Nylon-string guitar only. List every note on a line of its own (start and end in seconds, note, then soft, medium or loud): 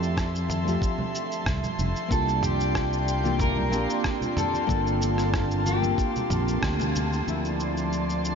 0.00 0.61 A3 medium
0.00 0.62 C4 medium
0.00 0.63 F4 medium
0.00 0.64 G4 loud
0.64 2.06 A3 medium
0.64 2.07 C4 medium
0.64 2.08 F4 medium
0.69 2.08 G4 medium
2.08 3.19 A#3 medium
2.08 3.20 C4 medium
2.08 3.21 D4 medium
2.08 3.21 F4 medium
2.13 3.22 G4 medium
3.24 3.68 A#3 medium
3.24 3.68 C4 medium
3.24 3.69 D4 medium
3.24 3.69 F4 medium
3.24 3.69 G4 medium
3.70 4.64 A#3 medium
3.70 4.65 C4 medium
3.70 4.65 D4 medium
3.70 4.66 F4 medium
3.74 4.66 G4 medium
4.67 5.78 A#3 medium
4.67 5.78 C4 medium
4.67 5.79 D4 medium
4.67 5.79 F4 medium
4.71 5.80 A4 loud
5.80 7.22 A#3 medium
5.80 7.23 C4 medium
5.80 7.23 D4 medium
5.80 7.24 F4 medium
5.85 7.24 A4 medium
7.25 8.35 F3 medium
7.25 8.35 C4 medium
7.25 8.35 D4 medium
7.25 8.35 E4 medium
7.29 8.35 A4 medium